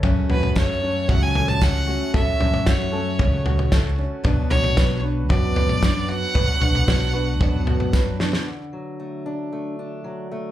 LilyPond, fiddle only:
\new Staff \with { instrumentName = "Fiddle" } { \time 4/4 \key b \dorian \tempo 4 = 114 r8 b'8 cis''4 fis''16 gis''8 a''16 fis''4 | e''4 cis''2 r4 | r8 cis''4 r8 d''4. fis''8~ | fis''2. r4 |
r1 | }